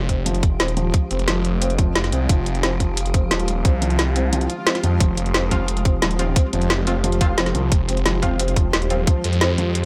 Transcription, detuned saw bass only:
0.00 0.59 F1 loud
0.60 0.92 D#1 loud
1.11 1.94 F1 loud
1.96 2.11 F1 medium
2.12 2.28 C2 loud
2.29 2.45 F1 medium
2.46 3.30 F1 loud
3.31 3.64 D#1 loud
3.65 4.48 C2 medium
4.84 4.99 F2 loud
5.00 5.16 F1 medium
5.17 6.01 F1 loud
6.02 6.35 D#1 loud
6.53 7.37 F1 medium
7.38 7.53 F1 loud
7.55 7.70 C2 loud
7.72 7.87 F1 medium
7.89 8.72 F1 loud
8.74 9.06 D#1 loud
9.24 9.57 F2 loud
9.58 9.85 F2 medium

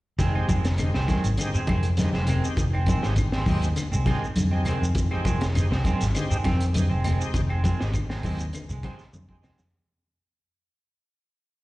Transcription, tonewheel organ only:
0.34 0.50 G#3 medium
0.34 0.50 C4 medium
0.34 0.50 D#4 medium
0.34 0.51 G4 medium
0.79 1.00 G#3 medium
0.79 1.00 C4 medium
0.79 1.01 D#4 medium
0.79 1.01 G4 medium
1.39 1.60 G#3 medium
1.39 1.61 C4 medium
1.39 1.61 D#4 medium
1.39 1.61 G4 loud
1.98 2.15 G#3 medium
1.98 2.15 C4 medium
1.98 2.15 D#4 medium
1.98 2.15 G4 medium
2.43 2.64 G#3 medium
2.43 2.65 C4 medium
2.43 2.65 D#4 medium
2.43 2.65 G4 medium
3.02 3.18 G#3 medium
3.02 3.18 C4 medium
3.02 3.18 D#4 medium
3.02 3.18 G4 medium
3.46 3.68 G#3 medium
3.46 3.69 C4 medium
3.46 3.69 D#4 medium
3.46 3.69 G4 medium
4.06 4.23 G#3 medium
4.06 4.23 C4 medium
4.06 4.23 D#4 medium
4.06 4.24 G4 medium
4.51 4.73 G#3 medium
4.51 4.73 C4 medium
4.51 4.73 D#4 medium
4.51 4.73 G4 medium
5.12 5.27 G#3 medium
5.12 5.27 C4 medium
5.12 5.27 D#4 medium
5.12 5.28 G4 medium
5.54 5.77 G#3 medium
5.54 5.77 C4 medium
5.54 5.78 D#4 medium
5.54 5.78 G4 medium
6.14 6.37 G#3 medium
6.14 6.37 C4 medium
6.14 6.38 D#4 medium
6.14 6.38 G4 medium
6.73 6.91 G#3 medium
6.73 6.91 C4 medium
6.73 6.91 D#4 medium
6.73 6.92 G4 medium
7.19 7.41 G#3 medium
7.19 7.41 C4 medium
7.19 7.41 D#4 medium
7.19 7.42 G4 medium
7.79 7.95 G#3 medium
7.79 7.95 C4 medium
7.79 7.96 D#4 medium
7.79 7.96 G4 medium
8.23 8.46 G#3 medium
8.23 8.46 C4 medium
8.23 8.46 D#4 medium
8.23 8.47 G4 medium
8.83 9.00 G#3 medium
8.83 9.00 C4 medium
8.83 9.00 D#4 medium
8.83 9.01 G4 medium
9.29 9.50 G#3 medium
9.29 9.51 C4 medium
9.29 9.51 D#4 medium
9.29 9.51 G4 medium

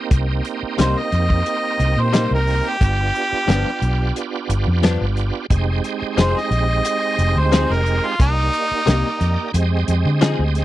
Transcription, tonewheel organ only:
0.00 2.77 A#3 medium
0.00 2.77 C4 medium
0.00 2.77 D#4 medium
0.00 2.77 G4 medium
2.80 5.46 B3 medium
2.80 5.46 D4 medium
2.80 5.46 F4 medium
2.80 5.47 G4 medium
5.50 8.15 G#3 medium
5.50 8.15 C4 medium
5.50 8.16 D#4 medium
5.50 8.16 G4 medium
8.19 9.51 A#3 medium
8.19 9.52 D#4 medium
8.19 9.52 G4 medium
8.19 9.51 D5 medium
9.53 10.65 G#3 medium
9.53 10.65 C4 medium
9.53 10.65 G4 medium
9.53 10.65 D#5 medium

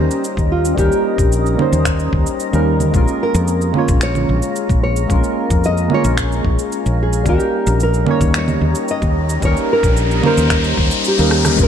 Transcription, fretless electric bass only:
0.37 0.74 D#2 medium
0.77 0.89 D#2 medium
1.18 1.55 A#1 medium
1.72 2.09 D#2 medium
2.13 2.24 D#2 medium
2.53 2.90 D#2 medium
2.94 3.05 A#1 medium
3.35 3.71 F2 loud
3.88 4.25 A#1 medium
4.29 4.40 A#1 medium
4.70 5.07 A#1 medium
5.10 5.21 A#1 medium
5.50 5.87 F2 loud
6.04 6.42 A#1 loud
6.44 6.56 A#1 medium
6.86 7.23 A#1 medium
7.25 7.37 D#2 medium
7.67 8.04 A#1 loud
8.21 8.58 D#2 loud
8.61 8.73 D#2 medium
9.02 9.39 D#2 medium
9.42 9.54 D#2 medium
9.83 10.20 A#1 loud
10.37 10.74 D#2 medium
10.78 10.89 D#2 medium
11.19 11.56 D#2 medium
11.58 11.68 A#1 medium

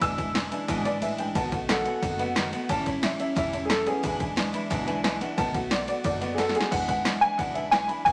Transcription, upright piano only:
0.02 0.67 E6 loud
0.85 1.01 D5 loud
1.02 1.18 E5 medium
1.19 1.35 G5 medium
1.36 1.68 A5 loud
1.69 2.32 A4 medium
1.69 2.35 F#5 loud
2.70 3.02 A5 loud
3.04 3.19 E5 medium
3.20 3.36 E5 loud
3.37 3.69 E5 loud
3.65 3.68 G#4 medium
3.70 3.86 A4 loud
3.86 4.18 B3 medium
3.86 4.20 G#4 medium
5.38 5.70 A5 loud
5.71 5.87 D5 loud
5.88 6.04 D5 loud
6.05 6.38 D5 loud
6.34 6.37 G#4 medium
6.39 6.55 A4 loud
6.56 6.72 G#4 loud
6.71 6.87 F#5 loud
6.88 7.23 F#5 loud
7.21 7.39 G#5 loud
7.38 7.56 F#5 loud
7.54 7.72 E5 medium
7.71 7.89 G#5 loud
7.88 8.06 B5 medium
8.05 8.12 G#5 loud

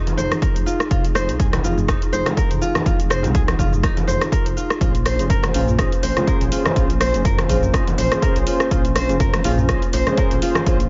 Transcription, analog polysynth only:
4.81 4.92 C#4 medium
4.81 4.92 F4 medium
4.81 4.92 G#4 medium
4.81 4.92 C5 medium
5.19 5.25 C#4 medium
5.19 5.25 F4 medium
5.19 5.25 G#4 medium
5.19 5.25 C5 medium
5.54 5.61 C#4 loud
5.54 5.61 F4 medium
5.54 5.61 G#4 medium
5.54 5.61 C5 loud
5.79 5.90 C#4 medium
5.79 5.90 F4 medium
5.79 5.90 G#4 medium
5.79 5.90 C5 loud
6.16 6.49 C#4 medium
6.16 6.49 F4 medium
6.16 6.49 G#4 medium
6.16 6.49 C5 loud
6.52 6.74 C#4 medium
6.52 6.74 F4 medium
6.52 6.74 G#4 medium
6.52 6.74 C5 medium
6.76 6.88 C#4 medium
6.76 6.88 F4 medium
6.76 6.88 G#4 medium
6.76 6.88 C5 loud
7.14 7.20 C#4 medium
7.14 7.20 F4 medium
7.14 7.20 G#4 medium
7.14 7.20 C5 medium
7.49 7.56 C#4 loud
7.49 7.56 F4 medium
7.49 7.56 G#4 medium
7.49 7.56 C5 loud
7.73 7.85 C#4 medium
7.73 7.85 F4 medium
7.73 7.85 G#4 medium
7.73 7.85 C5 loud
8.11 8.44 C#4 medium
8.11 8.44 F4 medium
8.11 8.44 G#4 medium
8.11 8.44 C5 loud
8.47 8.69 C#4 medium
8.47 8.69 F4 medium
8.47 8.69 G#4 medium
8.47 8.69 C5 medium
8.71 8.83 C#4 medium
8.71 8.83 F4 medium
8.71 8.83 G#4 medium
8.71 8.83 C5 medium
9.09 9.15 C#4 medium
9.09 9.15 F4 medium
9.09 9.15 G#4 medium
9.09 9.15 C5 loud
9.44 9.52 C#4 loud
9.44 9.51 F4 medium
9.44 9.52 G#4 medium
9.44 9.52 C5 loud
9.69 9.80 C#4 medium
9.69 9.80 F4 medium
9.69 9.80 G#4 medium
9.69 9.80 C5 loud
10.06 10.39 C#4 medium
10.06 10.39 F4 medium
10.06 10.39 G#4 medium
10.06 10.39 C5 loud
10.42 10.64 C#4 medium
10.42 10.64 F4 medium
10.42 10.64 G#4 medium
10.42 10.64 C5 medium
10.66 10.78 C#4 medium
10.66 10.78 F4 medium
10.66 10.78 G#4 medium
10.66 10.78 C5 loud

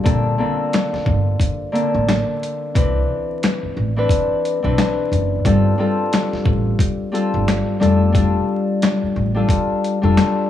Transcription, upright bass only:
0.06 0.32 A#1 loud
0.93 muted upright bass stroke soft
1.06 1.33 G1 medium
1.95 2.21 A1 medium
2.76 3.02 C2 loud
3.63 muted upright bass stroke soft
3.77 4.03 A1 medium
4.64 4.75 B1 medium
5.12 5.38 F#1 medium
5.45 5.72 G1 loud
6.33 muted upright bass stroke soft
6.46 6.72 A1 medium
7.34 7.60 G1 medium
7.81 8.34 F1 loud
9.02 muted upright bass stroke soft
9.16 9.42 A1 medium
10.03 10.14 F1 medium

